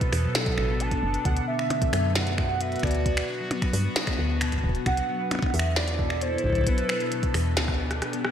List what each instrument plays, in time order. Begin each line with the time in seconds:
Already playing: harp B2 A3 B4, analog synth pad B2 B3 A4, soft synth lead B4
0.01 harp B3, kick, closed hi-hat
0.12 fm bass E2, finger snap, open hi-hat
0.24 harp F#3, analog synth pad D4
0.35 harp B3, soft synth lead A4, snare, closed hi-hat
0.46 harp B4, kick, closed hi-hat
0.58 fm bass A1, harp B4, finger snap
0.69 harp B3
0.80 harp D4, soft synth lead A5, closed hi-hat
0.91 harp B3, kick, closed hi-hat
1.03 fm bass F#1, harp D4
1.14 harp B4, closed hi-hat
1.25 fm bass D2, harp B2, analog synth pad D3, soft synth lead F#5, kick, closed hi-hat
1.37 closed hi-hat
1.42 analog synth pad A3
1.48 harp B3, soft synth lead E5
1.59 harp B3, finger snap
1.70 harp D4, closed hi-hat, percussion blips
1.82 harp F#3, kick, closed hi-hat
1.93 fm bass F#2, harp B3, finger snap, open hi-hat
2.04 analog synth pad F#4, harp B4
2.15 harp B3, soft synth lead F#5, snare, closed hi-hat
2.27 harp B3, closed hi-hat
2.38 harp A3, finger snap, kick
2.61 harp B4, soft synth lead E5, closed hi-hat
2.72 harp B4, closed hi-hat
2.76 closed hi-hat
2.79 fm bass D2, harp B2, soft synth lead D5, finger snap, kick, closed hi-hat
2.83 closed hi-hat
2.87 closed hi-hat
2.91 closed hi-hat
2.95 closed hi-hat
3.06 harp B3, kick, closed hi-hat
3.17 harp B3, finger snap, closed hi-hat
3.28 harp D4
3.40 harp F#3
3.49 analog synth pad B3, harp B3, closed hi-hat, percussion blips
3.62 harp B4, finger snap, kick, closed hi-hat
3.73 fm bass G2, harp B3, open hi-hat
3.85 harp B3
3.96 harp A3, snare, closed hi-hat
4.07 finger snap, kick, closed hi-hat
4.18 fm bass D2, harp B4
4.30 harp B4
4.41 harp B2, finger snap, closed hi-hat
4.52 kick, closed hi-hat
4.58 kick
4.64 fm bass D1, harp B3, kick
4.69 kick
4.75 harp B3, closed hi-hat
4.86 fm bass C2, harp D4, soft synth lead F#5, finger snap, kick, closed hi-hat
4.97 harp F#3, closed hi-hat
5.09 harp B3
5.20 harp B4
5.31 harp B3, finger snap, closed hi-hat, percussion blips
5.35 percussion blips
5.39 closed hi-hat, percussion blips
5.43 harp B3, kick, percussion blips
5.46 percussion blips
5.50 fm bass E2, harp A3, soft synth lead E5, open hi-hat, percussion blips
5.59 finger snap
5.66 analog synth pad E4 A4
5.76 harp B4, soft synth lead D5, snare
5.88 harp B4, closed hi-hat
5.99 harp B2, kick
6.10 finger snap
6.22 harp B3, soft synth lead C5, closed hi-hat
6.33 harp B3
6.38 closed hi-hat
6.44 fm bass B1, harp D4, kick
6.47 kick
6.50 kick
6.53 kick, closed hi-hat
6.55 harp F#3, kick
6.58 kick
6.61 kick
6.64 soft synth lead B4, kick, closed hi-hat
6.67 analog synth pad B2, harp B3, kick
6.78 harp B4, closed hi-hat
6.89 harp B3, finger snap
7.00 harp B3, closed hi-hat
7.12 harp A3, closed hi-hat
7.23 kick, closed hi-hat
7.34 fm bass E2, analog synth pad B3, harp B4, finger snap, open hi-hat
7.46 analog synth pad D4, harp B4
7.57 fm bass D2, harp B2, cross-stick, snare, closed hi-hat
7.68 kick, cross-stick
7.79 harp B3
7.91 cross-stick, closed hi-hat
8.02 harp B4, cross-stick, closed hi-hat
8.13 harp B3, closed hi-hat
8.25 harp E4, cross-stick